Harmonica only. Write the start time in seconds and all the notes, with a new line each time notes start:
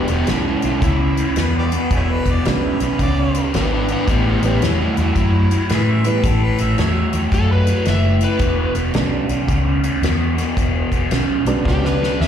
1.39 B4
1.58 G4 B4 D5
1.77 B4
1.95 A3 C#4 E4
2.13 B4
2.31 D5
2.47 B4
2.67 E4
2.84 B4
3.03 D5
5.74 E4 G#4 B4
5.91 E5
6.09 B4
6.27 A4
6.44 B4
6.61 E5
6.79 A4 C#5 E5